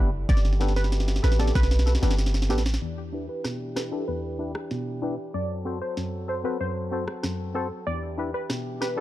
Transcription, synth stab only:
Already playing: E4 G4
0.00 B4
0.60 B3 D4 G4 A4 B4
1.23 A4 B4
1.39 B3 D4 G4 A4 D5
1.86 A4 B4
2.02 B3 D4 G4 A4 B4
2.49 B3 D4 G4 A4 B4
2.82 E2
3.12 D4 E4 G4 B4
3.45 B2
3.76 G4 A4
3.91 D4 E4 G4 B4
4.08 E2
4.39 D4 E4 G4 B4
4.71 B2
5.02 D4 E4 G4 B4
5.34 F#2
5.65 C4 F#4 A4 C5
5.97 F#2
6.28 A4 C5
6.44 C4 F#4 A4 C5
6.60 F#2
6.91 C4 F#4 A4 C5
7.24 F#2
7.54 C4 F#4 A4 C5
7.87 E2
8.18 D4 E4 G4 B4
8.50 B2
8.81 G4 B4
8.96 D4 E4

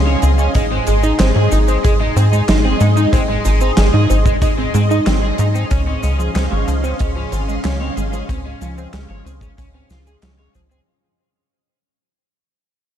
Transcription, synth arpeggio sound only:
0.07 C#4
0.23 C4
0.39 C#4
0.55 D#4
0.71 C4
0.87 G#3
1.03 D#4
1.20 C4
1.36 G#3
1.52 D#4
1.68 C4
1.84 G#4
2.00 D#4
2.16 C4
2.32 G#3
2.48 D#4
2.65 C4
2.81 G#3
2.97 D#4
3.13 C4
3.29 G#3
3.45 D#4
3.61 C4
3.78 G#4
3.94 D#4
4.10 C4
4.26 G#3
4.42 D#4
4.58 C4
4.74 G#3
4.91 D#4
5.07 C4
5.23 G#3
5.39 D#4
5.55 C4
5.71 C#4
5.87 C4
6.03 G#3
6.19 F3
6.35 C4
6.51 G#3
6.67 F3
6.84 C4
7.00 G#3
7.16 F3
7.32 C4
7.49 G#3
7.65 C#4
7.81 C4
7.97 G#3
8.13 F3
8.29 C4
8.46 G#3
8.62 F3
8.78 C4
8.94 G#3
9.10 F3
9.26 C4
9.42 G#3
9.58 C#4
9.74 C4
9.91 F3
10.07 G#4
10.23 F3
10.39 G#3
10.55 F3
10.71 C4

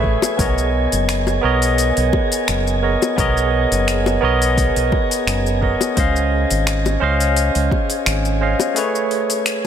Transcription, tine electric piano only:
Already playing: A3 G#4 B4 C#5 E5
0.37 B3 A#4 C#5 D#5
1.41 B3 A#4 C#5 D#5
2.82 B3 A#4 C#5 D#5
3.16 B3 A#4 C#5
3.20 D#5
4.21 B3 A#4 C#5 D#5
5.61 B3 A#4 C#5 D#5
5.96 C#4 C5 D#5
6.00 F5
7.00 C#4 C5 D#5 F5
8.41 C#4 C5 D#5 F5
8.74 A3 G#4 B4
8.78 C#5

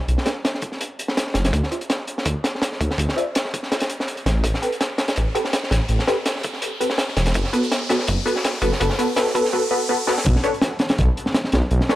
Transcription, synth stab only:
0.26 D4 A4 B4 C#5
1.71 F4 C5 D5 E5
3.17 F4 C5 D5 E5
4.62 C4 G4 A4 B4
5.35 C4 G4 A4 B4
6.08 C4 G4 A4 B4
6.80 C4 G4 A4 B4
7.53 B3 F#4 A4 B4
7.89 B3 F#4 A4 B4
8.26 B3 F#4 A4 B4
8.62 B3 F#4 A4 B4
8.80 B3 F#4 A4 B4
8.99 B3 F#4 A4 B4
9.16 B3 F#4 A4 B4
9.35 B3 F#4 A4 B4
9.53 B3 F#4 A4 B4
9.71 B3 F#4 A4 B4
9.89 B3 F#4 A4 B4
10.07 B3 F#4 A4 B4
10.43 D4 A4 B4 C#5
11.90 D4 A4 B4 C#5

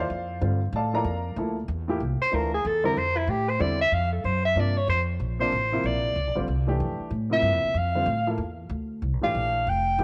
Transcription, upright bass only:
0.10 F2
0.41 G2
0.73 A2
1.04 F2
1.36 D2
1.68 E2
2.00 C2
2.21 muted upright bass stroke
2.32 D2
2.65 E2
2.96 F2
3.27 A2
3.60 E2
3.92 F2
4.24 F#2
4.56 G2
4.88 F2
5.20 A#1
5.52 A1
5.84 A#1
6.16 C#2
6.27 A#1
6.37 A1
6.48 C2
6.80 F2
7.00 muted upright bass stroke
7.11 A2
7.42 G2
7.52 F2
7.64 D2
7.74 F2
8.06 A2
8.38 E2
8.69 D2
9.02 C2
9.13 A#1
9.24 A1
9.34 A#1
9.67 F1
9.99 A1

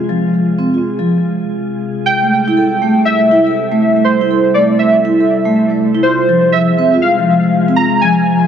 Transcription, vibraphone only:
0.09 F3
0.34 F3
0.59 C4
0.74 F4
0.99 F3
2.23 A3
2.48 E4
2.57 A4
2.82 A3
3.31 E4
3.47 A4
3.72 A3
3.96 A3
4.21 E4
4.31 A4
4.55 A3
4.80 A3
5.05 E4
5.20 A4
5.45 A3
5.70 A3
5.95 E4
6.04 F4
6.29 F3
6.54 F3
6.79 C4
6.94 F4
7.19 F3
7.43 F3
7.68 C4
7.78 F4
8.03 F3
8.27 F3

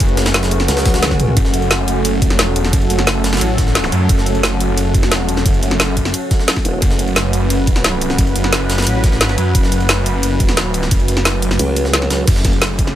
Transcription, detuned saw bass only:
0.00 F#1
0.17 F#1
1.37 F#1
2.32 F1
2.59 E1
2.73 F#1
2.90 F#1
3.41 A1
3.92 F#2
4.09 F#1
5.04 F1
5.31 E1
5.46 F#1
5.63 F#1
6.82 F#1
8.18 F#1
8.35 F#1
8.87 A1
9.38 F#2
9.55 F#1
10.74 D1
10.91 F#1
11.08 F#1
12.28 F#1

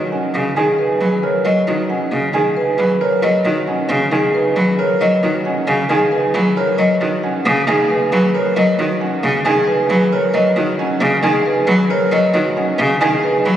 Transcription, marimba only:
0.12 F#5
0.57 G#4
0.79 B4
1.23 C#5
1.45 D#5
1.90 F#5
2.35 G#4
2.57 B4
3.01 C#5
3.23 D#5
3.67 F#5
4.12 G#4
4.35 B4
4.79 C#5
5.01 D#5
5.45 F#5
5.90 G#4
6.12 B4
6.57 C#5
6.79 D#5
7.23 F#5
7.68 G#4
7.90 B4
8.34 C#5
8.57 D#5
9.01 F#5
9.46 G#4
9.68 B4
10.12 C#5
10.35 D#5
10.79 F#5
11.23 G#4
11.46 B4
11.90 C#5
12.12 D#5
12.57 F#5
13.02 G#4
13.24 B4

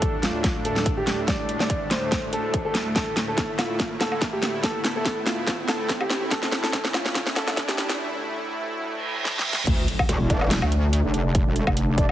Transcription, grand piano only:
Already playing: A4
0.23 F4
0.65 A4
0.97 G4
1.28 D5
1.60 D5
1.91 C5
2.33 A4
2.65 A4
2.96 A4
3.28 A4
3.59 F4
4.01 A4
4.33 G4
4.64 A4
4.96 A4
5.26 F4
5.68 A4
6.01 G4
6.31 A4
6.63 A4
6.94 F4
7.36 A4
7.68 G4

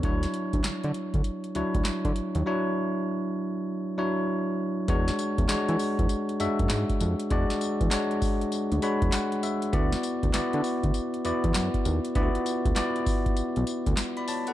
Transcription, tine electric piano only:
0.04 F#3 D4 E4 C#5
1.55 F#3 D4 E4 C#5
2.46 F#3 D4 E4 C#5
3.98 F#3 D4 E4 C#5
4.88 G#3 D4 F#4 C#5
5.49 G#3 D4 F#4 C#5
6.40 G#3 D4 F#4 E5
7.31 G#3 D4 F#4 D5
7.91 G#3 D4 F#4 C#5
8.82 G#3 D4 F#4 C#5 B5
9.13 F#5
9.43 E5
9.73 B3 E4 F#4 D5
10.34 B3 E4 F#4 D5
11.25 B3 E4 F#4 D5
12.15 B3 E4 F4 D5
12.23 F#4
12.76 B3 E4 F#4 D5
14.17 D5 B5
14.28 C#5 A5
14.48 A4 F#5

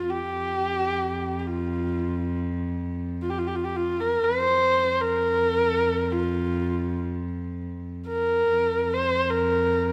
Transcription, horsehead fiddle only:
Already playing: F4
0.10 G4
1.39 G4
1.47 F4
3.22 F4
3.30 G4
3.38 F4
3.47 G4
3.55 F4
3.64 G4
3.76 F4
4.00 A#4
4.23 C5
5.00 A#4
6.13 F4
8.08 A#4
8.94 C5
9.30 A#4

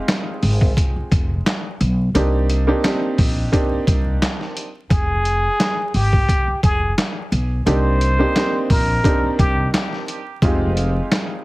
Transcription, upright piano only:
Already playing: G#3 C4 D#4 F4 G4
2.15 A#3 C4 D4 D#4 G4
2.67 A#3 C4 D4 D#4 G4
2.84 A#3 C4 D4 D#4 G4
3.52 A#3 C4 D4 D#4 G4
7.66 A#3 C4 D4 D#4 G4
8.19 A#3 C4 D4 D#4 G4
8.35 A#3 C4 D4 D#4 G4
9.04 A#3 C4 D4 D#4 G4
10.43 G#3 C4 D#4 F4 G4

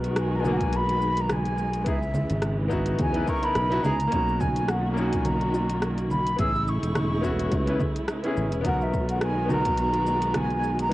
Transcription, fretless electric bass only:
Already playing: B1
1.87 C#2
2.30 G#1
3.00 E2
3.56 B1
3.85 C#2
4.13 B1
6.40 A1
6.83 E1
7.53 C#2
8.37 A1
8.53 E1
8.66 B1

